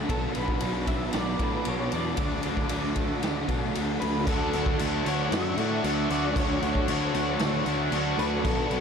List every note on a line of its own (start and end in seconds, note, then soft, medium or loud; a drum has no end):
0.00 0.10 F#3 medium
0.00 0.10 A3 medium
0.00 0.11 D4 loud
0.00 0.12 D4 medium
0.00 0.11 F#4 medium
0.08 0.29 B1 loud
0.08 0.87 B2 medium
0.08 0.61 F#3 medium
0.08 0.61 B3 loud
0.08 0.63 D4 loud
0.08 0.64 F#4 loud
0.08 0.35 A4 medium
0.08 2.17 B4 medium
0.08 2.16 A5 medium
0.08 4.24 D6 medium
0.08 kick loud
0.08 ride medium
0.35 0.56 B1 medium
0.35 0.90 B4 loud
0.35 ride medium
0.48 kick medium
0.60 1.02 B1 medium
0.60 1.12 B2 medium
0.60 1.13 F#3 medium
0.60 0.89 B3 medium
0.60 0.88 D4 medium
0.60 ride medium
0.65 0.87 F#4 medium
0.87 1.14 F#3 medium
0.87 1.13 B3 medium
0.87 1.15 D4 medium
0.87 1.17 F#4 medium
0.87 1.14 E5 medium
0.87 kick medium
0.87 ride medium
1.13 1.34 B1 medium
1.13 1.63 B2 medium
1.13 1.66 F#3 medium
1.13 1.66 B3 medium
1.13 1.68 D4 medium
1.13 1.41 D5 loud
1.13 snare loud
1.13 ride loud
1.17 1.68 F#4 medium
1.39 1.60 A2 medium
1.39 1.64 F#3 medium
1.39 1.65 B3 medium
1.39 1.67 D4 medium
1.39 1.68 B4 medium
1.39 kick medium
1.39 ride medium
1.65 1.86 B1 medium
1.65 2.16 B2 medium
1.65 2.17 F#3 medium
1.65 1.93 B3 medium
1.65 1.93 D4 loud
1.65 1.91 F#4 medium
1.65 1.94 C#5 medium
1.65 ride medium
1.92 2.12 E2 medium
1.92 2.18 B3 medium
1.92 2.19 D4 medium
1.92 2.19 F#4 medium
1.92 ride medium
1.96 2.95 D5 medium
2.17 2.38 D2 medium
2.17 2.96 D3 medium
2.17 2.68 F#3 loud
2.17 2.69 A3 loud
2.17 2.70 D4 loud
2.17 2.71 F#4 loud
2.17 4.26 A4 medium
2.17 4.25 F#5 medium
2.17 kick loud
2.17 ride medium
2.43 2.65 D2 medium
2.43 ride medium
2.57 kick medium
2.57 snare soft
2.69 3.10 D2 medium
2.69 3.21 D3 medium
2.69 3.20 F#3 medium
2.69 2.97 A3 medium
2.69 2.96 D4 medium
2.69 2.94 F#4 medium
2.69 ride loud
2.95 3.22 F#3 medium
2.95 3.22 A3 medium
2.95 3.23 D4 medium
2.95 3.24 F#4 medium
2.95 kick medium
2.95 ride medium
3.22 3.43 D2 medium
3.22 3.74 D3 medium
3.22 3.73 F#3 medium
3.22 3.73 A3 medium
3.22 3.74 D4 medium
3.22 3.75 F#4 medium
3.22 snare loud
3.22 ride medium
3.48 3.68 B2 medium
3.48 3.77 A3 medium
3.48 3.78 D4 medium
3.48 kick medium
3.48 ride medium
3.53 3.76 F#3 medium
3.73 3.96 D2 medium
3.73 4.25 D3 medium
3.73 4.25 F#3 medium
3.73 4.01 A3 loud
3.73 4.00 D4 medium
3.73 3.98 F#4 loud
3.73 ride medium
4.00 4.26 D2 medium
4.00 4.25 A3 medium
4.00 4.26 D4 medium
4.00 4.25 F#4 medium
4.00 4.27 B4 medium
4.00 ride medium
4.26 4.49 D2 loud
4.26 4.77 D3 medium
4.26 4.80 F#3 medium
4.26 4.55 A3 loud
4.26 4.54 D4 medium
4.26 8.80 D4 medium
4.26 8.41 F#4 medium
4.26 4.52 F#4 loud
4.26 4.76 A4 loud
4.26 8.41 C#6 medium
4.26 kick loud
4.26 crash medium
4.53 4.75 D2 medium
4.53 4.78 D3 medium
4.53 4.78 A3 medium
4.53 4.80 D4 medium
4.53 4.80 F#4 medium
4.53 crash medium
4.66 kick medium
4.78 5.02 D2 medium
4.78 5.29 D3 medium
4.78 5.31 F#3 medium
4.78 5.06 A3 medium
4.78 5.05 D4 medium
4.78 5.04 F#4 medium
4.78 crash medium
5.04 5.27 D2 medium
5.04 5.30 D3 medium
5.04 5.31 A3 medium
5.04 5.31 D4 medium
5.04 5.32 F#4 medium
5.04 5.33 C#5 medium
5.04 crash medium
5.30 5.53 F#2 medium
5.30 5.82 D3 loud
5.30 5.60 F#3 loud
5.30 5.59 A3 medium
5.30 5.58 D4 loud
5.30 5.56 F#4 loud
5.30 6.10 E5 loud
5.30 snare loud
5.30 crash medium
5.56 5.79 A2 medium
5.56 5.83 D3 medium
5.56 5.84 A3 medium
5.56 5.85 D4 medium
5.56 5.85 F#4 medium
5.56 crash medium
5.60 5.84 F#3 medium
5.83 6.06 D2 medium
5.83 6.33 D3 medium
5.83 6.36 F#3 medium
5.83 6.12 A3 medium
5.83 6.10 D4 medium
5.83 6.09 F#4 medium
5.83 crash medium
6.09 6.32 D2 medium
6.09 6.35 D3 medium
6.09 6.35 A3 medium
6.09 6.37 D4 medium
6.09 6.37 F#4 medium
6.09 6.37 D5 loud
6.09 crash medium
6.34 6.58 D2 medium
6.34 6.86 D3 loud
6.34 6.89 F#3 loud
6.34 6.64 A3 loud
6.34 6.62 D4 loud
6.34 6.61 F#4 loud
6.34 kick loud
6.34 crash medium
6.39 6.89 C#5 loud
6.62 6.84 D2 medium
6.62 6.87 D3 medium
6.62 6.88 A3 medium
6.62 6.89 D4 medium
6.62 6.90 F#4 medium
6.62 crash medium
6.75 kick medium
6.88 7.10 D2 medium
6.88 7.38 D3 medium
6.88 7.41 F#3 medium
6.88 7.16 A3 medium
6.88 7.14 D4 medium
6.88 7.13 F#4 medium
6.88 7.90 C#5 medium
6.88 crash medium
7.14 7.36 D2 medium
7.14 7.38 D3 medium
7.14 7.40 A3 medium
7.14 7.41 D4 medium
7.14 7.41 F#4 medium
7.14 crash medium
7.39 7.62 D2 medium
7.39 7.90 D3 loud
7.39 7.69 F#3 medium
7.39 7.66 A3 loud
7.39 7.66 D4 medium
7.39 7.64 F#4 loud
7.39 snare loud
7.39 crash medium
7.65 7.88 D2 medium
7.65 7.91 D3 medium
7.65 7.91 A3 medium
7.65 7.93 D4 medium
7.65 7.93 F#4 medium
7.65 crash medium
7.70 7.92 F#3 medium
7.91 8.14 D2 medium
7.91 8.43 D3 medium
7.91 8.43 F#3 medium
7.91 8.21 A3 medium
7.91 8.20 D4 medium
7.91 8.18 F#4 medium
7.91 crash medium
8.17 8.46 D2 medium
8.17 8.42 D3 medium
8.17 8.46 D4 medium
8.17 8.43 F#4 medium
8.17 8.44 B4 loud
8.17 crash medium
8.22 8.45 A3 medium
8.44 8.66 B1 loud
8.44 8.80 B2 medium
8.44 8.80 F#3 loud
8.44 8.73 B3 loud
8.44 8.72 D4 loud
8.44 8.70 F#4 loud
8.44 8.80 A4 loud
8.44 8.80 A4 medium
8.44 8.80 B5 medium
8.44 kick loud
8.44 crash medium
8.70 8.80 B1 medium
8.70 8.80 B2 medium
8.70 8.80 F#3 medium
8.70 8.80 D4 medium
8.70 8.80 F#4 medium
8.70 crash medium
8.75 8.80 B3 medium